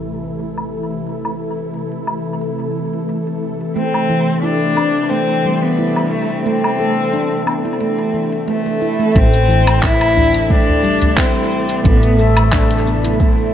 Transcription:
Already playing: A1 C3 E3 A3 E4 A4
0.05 cabasa
0.24 closed hi-hat, cabasa
0.40 closed hi-hat, cabasa
0.58 closed hi-hat, low woodblock
0.73 cabasa
0.91 closed hi-hat, cabasa
1.07 closed hi-hat, cabasa
1.25 closed hi-hat, low woodblock
1.40 cabasa
1.58 closed hi-hat, cabasa
1.74 closed hi-hat, cabasa
1.92 closed hi-hat
2.07 cabasa, low woodblock
2.26 cabasa
2.41 closed hi-hat, cabasa
2.60 closed hi-hat
2.75 cabasa
2.93 closed hi-hat, cabasa
3.09 closed hi-hat, cabasa
3.27 closed hi-hat
3.43 cabasa
3.61 closed hi-hat, cabasa
3.76 A3 C4 D4, closed hi-hat, cabasa
3.94 A3, closed hi-hat, low woodblock
4.10 E3
4.28 A3, closed hi-hat
4.43 D4 E4, closed hi-hat, cabasa
4.62 closed hi-hat
4.77 D4, cabasa, low woodblock
4.95 cabasa
5.09 A3 C4, closed hi-hat
5.29 closed hi-hat
5.45 G3
5.62 B3, closed hi-hat
5.78 E4, closed hi-hat, cabasa
5.96 closed hi-hat, low woodblock
6.11 A3, cabasa
6.31 closed hi-hat, cabasa
6.44 A3 C4, closed hi-hat, cabasa
6.64 closed hi-hat, low woodblock
6.80 A4, cabasa
6.98 closed hi-hat
7.13 D4, closed hi-hat, cabasa
7.32 closed hi-hat
7.47 B3, cabasa, low woodblock
7.65 E4, closed hi-hat, cabasa
7.80 A3, closed hi-hat, cabasa
7.98 closed hi-hat
8.14 E3, cabasa
8.32 closed hi-hat, cabasa
8.48 A3, closed hi-hat, cabasa
8.66 A3, closed hi-hat
8.82 E4, cabasa
8.99 A3, closed hi-hat, cabasa
9.15 A1 C3 E3 A3 C4 E4 A4, kick, cabasa
9.33 A3, closed hi-hat, cabasa
9.49 E3, cabasa
9.66 A3, closed hi-hat, cabasa, low woodblock
9.82 E4, kick, clap, cabasa
10.01 closed hi-hat, cabasa, low woodblock
10.16 D4, udu, cabasa
10.34 closed hi-hat, cabasa
10.50 A3 D4, kick, cabasa
10.68 udu, cabasa
10.83 G3, cabasa
11.02 closed hi-hat, udu, cabasa
11.17 C4 E4, kick, clap, cabasa
11.35 closed hi-hat, cabasa
11.51 cabasa
11.69 closed hi-hat, cabasa
11.84 A1 A3 B3, kick, cabasa
12.03 closed hi-hat, cabasa
12.19 A3 A4, cabasa
12.37 closed hi-hat, cabasa, low woodblock
12.52 D4, kick, clap, cabasa
12.71 closed hi-hat, cabasa
12.86 B3, cabasa
13.04 E4, closed hi-hat, cabasa
13.20 A3, kick, cabasa
13.38 cabasa

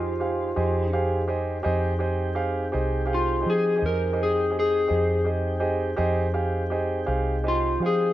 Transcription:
Already playing: F2 D#4 F4 G4 G#4 C5 D#5
0.20 G4 G#4 C5 F5
0.56 F2 G4 G#4 C5 D#5
0.93 G4 G#4 C5 F5
1.28 G4 G#4 C5 D#5
1.63 F2 C4 D#4 G4 G#4 C5 D#5 G5
1.99 G4 G#4 C5 D#5
2.35 G4 G#4 C5 F5
2.72 C2 G4 G#4 C5 D#5
3.06 G4 G#4 C5 F5
3.14 F4
3.40 G4 G#4 C5 D#5
3.46 F3 G#4
3.76 G4 G#4 C5 D#5
3.82 F2 A#4
4.13 G4 G#4 C5 D#5
4.23 G#4
4.50 G4 G#4 C5 D#5
4.60 G#4
4.88 F2 G4 G#4 C5 D#5
5.24 G4 G#4 C5 D#5
5.60 G4 G#4 C5 D#5
5.97 F2 C4 D#4 G4 G#4 C5 D#5 G5
6.34 G4 G#4 C5 F5
6.70 G4 G#4 C5 D#5
7.06 C2 G4 G#4 C5 F5
7.44 G4 G#4 C5 D#5
7.48 F4
7.80 F3 G4 G#4 C5 F5
7.86 G#4

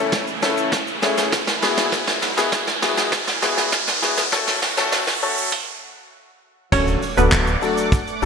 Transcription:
Already playing: C#3 E3 A3 C#4 E4 A4, riser
0.12 kick, snare, closed hi-hat, shaker
0.27 closed hi-hat, shaker
0.42 A3 C#4 E4 A4, snare, open hi-hat, shaker
0.57 closed hi-hat, shaker
0.72 kick, snare, closed hi-hat, shaker
0.87 closed hi-hat, shaker
1.02 A3 C#4 E4 G#4, snare, open hi-hat, shaker
1.17 snare, closed hi-hat, shaker
1.32 kick, snare, closed hi-hat, shaker
1.47 snare, closed hi-hat, shaker
1.62 B2 F#3 G#3 B3 E4 F#4 G#4, snare, open hi-hat, shaker
1.77 snare, closed hi-hat, shaker
1.92 kick, snare, closed hi-hat, shaker
2.07 snare, closed hi-hat, shaker
2.22 snare, open hi-hat, shaker
2.37 B3 E4 F#4 G#4, snare, closed hi-hat, shaker
2.52 kick, snare, closed hi-hat, shaker
2.67 snare, shaker
2.82 B3 E4 F#4 G#4, snare, open hi-hat, shaker
2.97 snare, closed hi-hat, shaker
3.12 kick, snare, closed hi-hat, shaker
3.27 snare, closed hi-hat, shaker
3.42 B3 E4 F#4 G#4, snare, open hi-hat, shaker
3.57 snare, closed hi-hat, shaker
3.72 kick, snare, closed hi-hat, shaker
3.87 snare, closed hi-hat, shaker
4.02 B3 E4 F#4 G#4, snare, open hi-hat, shaker
4.17 snare, closed hi-hat, shaker
4.32 C#3 A3 C#4 F#4 A4, kick, snare, closed hi-hat, shaker
4.47 snare, shaker
4.62 snare, open hi-hat, shaker
4.77 A3 C#4 F#4 A4, snare, closed hi-hat, shaker
4.92 snare, closed hi-hat, shaker
5.07 snare, shaker
5.22 A3 C#4 F#4 A4, open hi-hat, shaker
5.37 closed hi-hat, shaker
5.52 kick, crash
6.72 D1 F#3 A3 C#4 D4 F#4 A4 C#5 D5 F#5 D6, kick, crash, impact
6.87 closed hi-hat, shaker
7.02 open hi-hat, shaker
7.17 D1 F#3 A3 B3 D4 F#4 A4 B4, closed hi-hat, shaker
7.32 D1, kick, clap, closed hi-hat, shaker
7.47 closed hi-hat, shaker
7.62 F#3 A3 D4 F#4 A4, open hi-hat, shaker
7.77 closed hi-hat, shaker
7.92 kick, closed hi-hat, shaker
8.07 closed hi-hat, shaker
8.22 F#3 A3, open hi-hat, shaker

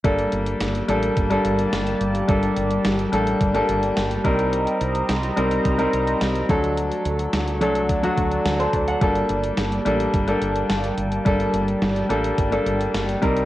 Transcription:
0.04 G1 G3 A#3 D4 G4 A4 D5 A5, kick, closed hi-hat
0.19 closed hi-hat
0.32 G1, closed hi-hat
0.47 closed hi-hat
0.61 G1, snare, closed hi-hat
0.75 closed hi-hat
0.88 A1 G3 A#3 D4 A4, closed hi-hat
1.03 closed hi-hat
1.17 G1, kick, closed hi-hat
1.30 G3 A#3 D4 A4, closed hi-hat
1.45 G1, closed hi-hat
1.59 closed hi-hat
1.73 G1, snare, closed hi-hat
1.87 closed hi-hat
2.01 G1, closed hi-hat
2.15 closed hi-hat
2.28 G1 G3 A#3 D4 A4, kick, closed hi-hat
2.43 closed hi-hat
2.56 G1, closed hi-hat
2.71 closed hi-hat
2.85 G1, snare, closed hi-hat
2.99 closed hi-hat
3.12 A1 G3 A#3 D4 A4, closed hi-hat
3.27 closed hi-hat
3.41 G1, kick, closed hi-hat
3.54 G3 A#3 D4 A4, closed hi-hat
3.69 G1, closed hi-hat
3.83 closed hi-hat
3.97 G1, snare, closed hi-hat
4.11 closed hi-hat
4.24 C2 G3 C4 D#4 A#4 C5 D#5 A#5, kick, closed hi-hat
4.39 closed hi-hat
4.53 closed hi-hat
4.67 closed hi-hat
4.81 C2, closed hi-hat
4.95 closed hi-hat
5.09 C2, snare, closed hi-hat
5.23 closed hi-hat
5.36 C2 G3 C4 D#4 A#4, closed hi-hat
5.51 closed hi-hat
5.65 C2, kick, closed hi-hat
5.78 G3 C4 D#4 A#4, closed hi-hat
5.93 C2, closed hi-hat
6.07 closed hi-hat
6.21 C2, snare, closed hi-hat
6.35 closed hi-hat
6.49 D2 F#3 A3 D4 F#4 A4 D5 A5, kick, closed hi-hat
6.64 closed hi-hat
6.77 closed hi-hat
6.92 closed hi-hat
7.05 D2, closed hi-hat
7.19 closed hi-hat
7.33 D2, snare, closed hi-hat
7.48 closed hi-hat
7.61 C2 F#3 A3 D4 A4, closed hi-hat
7.75 closed hi-hat
7.89 D2, kick, closed hi-hat
8.03 F#3 A3 D4 F#4, closed hi-hat
8.18 D2, kick, closed hi-hat
8.32 closed hi-hat
8.45 D2 D5, snare, closed hi-hat
8.60 A4 C5, closed hi-hat
8.73 D2 D5, kick, closed hi-hat
8.88 D5 F#5, closed hi-hat
9.01 G1 G3 A#3 D4 G4 A4, kick, closed hi-hat
9.15 closed hi-hat
9.29 G1, closed hi-hat
9.44 closed hi-hat
9.57 G1, snare, closed hi-hat
9.72 closed hi-hat
9.85 A1 G3 A#3 D4 A4, closed hi-hat
10.00 closed hi-hat
10.14 G1, kick, closed hi-hat
10.28 G3 A#3 D4 A4, closed hi-hat
10.42 G1, closed hi-hat
10.56 closed hi-hat
10.70 G1, snare, closed hi-hat
10.84 closed hi-hat
10.98 G1, closed hi-hat
11.12 closed hi-hat
11.25 G1 G3 A#3 D4 A4, kick, closed hi-hat
11.40 closed hi-hat
11.54 G1, closed hi-hat
11.68 closed hi-hat
11.82 G1, snare, closed hi-hat
11.96 closed hi-hat
12.09 A1 G3 A#3 D4 A4, closed hi-hat
12.24 closed hi-hat
12.38 G1, kick, closed hi-hat
12.52 G3 A#3 D4 A4, closed hi-hat
12.66 G1, closed hi-hat
12.81 closed hi-hat
12.94 G1, snare, closed hi-hat
13.09 closed hi-hat
13.22 C2 G3 C4 D#4 A#4 C5 D#5 A#5, kick, closed hi-hat
13.36 closed hi-hat

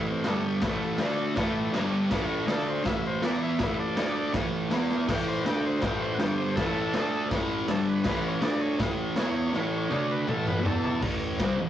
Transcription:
Already playing: A2 E3 A3
0.10 C4
0.24 G2 D3 G3 A3, snare, open hi-hat
0.46 G3
0.62 A2 E3 A3, kick, snare, open hi-hat
0.98 D3 A3 D4, snare, open hi-hat
1.36 A2 E3 A3, kick, snare, open hi-hat
1.73 G2 D3 G3, snare, open hi-hat
2.11 A2 E3 A3, kick, snare, crash
2.47 D3 A3 D4 G#4, snare, open hi-hat
2.51 A4
2.69 C5
2.84 A2 E3 A3 E5, kick, snare, open hi-hat
3.07 C5
3.23 E3 B3 E4 D5, snare, open hi-hat
3.43 E5
3.59 A2 E3 A3, kick, snare, open hi-hat
3.80 D5
3.96 D3 A3 D4, snare, open hi-hat
4.34 A2 E3 A3, kick, snare, open hi-hat
4.70 E3 B3 E4, snare, open hi-hat
4.90 snare
5.08 A2 E3 A3 G5, kick, snare, crash
5.28 C5
5.44 D3 A3 D4 F#5 G5, snare, open hi-hat
5.65 C5
5.82 A2 E3 A3 G5, kick, snare, open hi-hat
6.01 C5
6.14 F#5
6.19 G2 D3 G3 G5, snare, open hi-hat
6.37 C5
6.56 A2 E3 A3 A4, kick, snare, open hi-hat
6.94 D3 A3 D4, snare, open hi-hat
7.31 A2 E3 A3, kick, snare, open hi-hat
7.67 G2 D3 G3 A4, snare, open hi-hat
7.89 B4
8.04 A2 E3 A3, kick, snare, crash
8.27 C#5
8.42 D3 A3 D4 D5, snare, open hi-hat
8.61 C#5
8.79 A2 E3 A3, kick, snare, open hi-hat
9.16 E3 B3 E4 C#5, snare, open hi-hat
9.53 A2 E3 A3 C#5, snare
9.89 D3 A3 D4, high tom
10.11 B4
10.27 A2 E3 A3 A4, mid tom
10.47 B4, mid tom
10.65 E3 B3 E4 A4, floor tom
10.84 A4, floor tom
11.01 A2 E3 A3, kick, crash
11.40 C3 G3 C4, kick, snare, crash
11.57 A2 E3

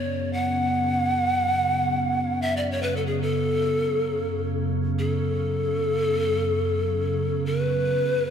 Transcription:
Already playing: F#2 C#3 B3 C#5
0.33 F#5
2.42 E5
2.57 D5
2.72 C#5
2.83 B4
2.96 A4
3.07 G#4
3.22 A4
4.99 A4
7.46 B4

